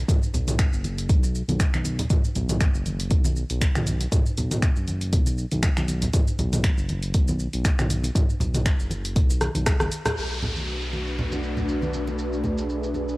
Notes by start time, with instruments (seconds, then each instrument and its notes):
0.09 kick, closed hi-hat, mid tom, shaker
0.23 shaker
0.34 analog synth bass B1, closed hi-hat, muted conga, low conga, shaker
0.48 closed hi-hat, mid tom, shaker
0.59 finger snap, kick, closed hi-hat, shaker
0.73 analog synth bass F#1, shaker
0.84 closed hi-hat, muted conga, high conga, shaker
0.98 closed hi-hat, shaker
1.09 analog synth bass B1, kick, closed hi-hat, low conga, shaker
1.23 muted conga, shaker
1.35 shaker
1.48 analog synth bass B1, closed hi-hat, high conga, shaker
1.60 finger snap, kick, closed hi-hat, shaker
1.73 analog synth bass B1, finger snap, high conga, shaker
1.84 closed hi-hat, high conga, shaker
1.99 closed hi-hat, muted conga, low conga, shaker
2.10 kick, closed hi-hat, mid tom, shaker
2.24 shaker
2.35 analog synth bass B1, closed hi-hat, muted conga, low conga, shaker
2.49 closed hi-hat, mid tom, high conga, shaker
2.61 finger snap, kick, closed hi-hat, shaker
2.74 analog synth bass F#1, shaker
2.86 closed hi-hat, muted conga, high conga, shaker
3.00 closed hi-hat, shaker
3.11 analog synth bass B1, kick, closed hi-hat, shaker
3.24 muted conga, high conga, shaker
3.36 shaker
3.50 analog synth bass B1, closed hi-hat, shaker
3.61 finger snap, kick, closed hi-hat, muted conga, shaker
3.75 analog synth bass B1, finger snap, mid tom, high conga, shaker
3.87 closed hi-hat, high conga, shaker
4.01 closed hi-hat, muted conga, shaker
4.12 kick, closed hi-hat, mid tom, shaker
4.26 shaker
4.37 analog synth bass B1, closed hi-hat, muted conga, low conga, shaker
4.51 closed hi-hat, mid tom, shaker
4.62 finger snap, kick, closed hi-hat, shaker
4.76 analog synth bass F#1, shaker
4.88 closed hi-hat, muted conga, high conga, shaker
5.01 closed hi-hat, shaker
5.13 analog synth bass B1, kick, closed hi-hat, low conga, shaker
5.26 muted conga, shaker
5.38 shaker
5.52 analog synth bass B1, closed hi-hat, high conga, shaker
5.63 finger snap, kick, closed hi-hat, muted conga, shaker
5.77 analog synth bass B1, finger snap, high conga, shaker
5.88 closed hi-hat, high conga, shaker
6.02 closed hi-hat, muted conga, low conga, shaker
6.13 kick, closed hi-hat, mid tom, shaker
6.28 shaker
6.39 analog synth bass B1, closed hi-hat, muted conga, low conga, shaker
6.53 closed hi-hat, mid tom, high conga, shaker
6.64 finger snap, kick, closed hi-hat, shaker
6.77 analog synth bass F#1, shaker
6.89 closed hi-hat, muted conga, high conga, shaker
7.03 closed hi-hat, shaker
7.14 analog synth bass B1, kick, closed hi-hat, shaker
7.28 muted conga, high conga, shaker
7.39 shaker
7.53 analog synth bass B1, closed hi-hat, shaker
7.64 finger snap, kick, closed hi-hat, muted conga, shaker
7.79 analog synth bass B1, finger snap, mid tom, high conga, shaker
7.90 closed hi-hat, high conga, shaker
8.04 closed hi-hat, muted conga, shaker
8.15 kick, closed hi-hat, mid tom, shaker
8.30 shaker
8.40 analog synth bass B1, closed hi-hat, muted conga, low conga, shaker
8.54 closed hi-hat, mid tom, high conga, shaker
8.66 finger snap, kick, closed hi-hat, shaker
8.79 analog synth bass F#1, shaker
8.90 closed hi-hat, muted conga, high conga, shaker
9.05 closed hi-hat, shaker
9.16 analog synth bass B1, kick, closed hi-hat, low conga, shaker
9.30 muted conga, shaker
9.41 cross-stick, closed hi-hat, high conga, shaker
9.55 analog synth bass B1, closed hi-hat, high conga, shaker
9.66 finger snap, kick, cross-stick, closed hi-hat, muted conga, shaker
9.80 analog synth bass F#1, cross-stick, high conga, shaker
9.92 closed hi-hat, shaker
10.05 cross-stick, closed hi-hat, muted conga, low conga, shaker
10.17 analog synth bass B1, ambient pad A3 D4 F#4 B4, downlifter, shaker
10.31 shaker
10.42 muted conga, low conga, shaker
10.56 high conga, shaker
10.67 shaker
10.81 shaker
10.93 muted conga, high conga, shaker
11.07 shaker
11.18 low conga, shaker
11.32 muted conga, high conga, shaker
11.43 shaker
11.57 low conga, shaker
11.69 muted conga, shaker
11.82 high conga, shaker
11.94 high conga, shaker
12.08 muted conga, shaker
12.19 ambient pad G#4, shaker
12.33 shaker
12.44 muted conga, low conga, shaker
12.58 shaker
12.70 shaker
12.83 shaker
12.94 muted conga, high conga, shaker
13.08 shaker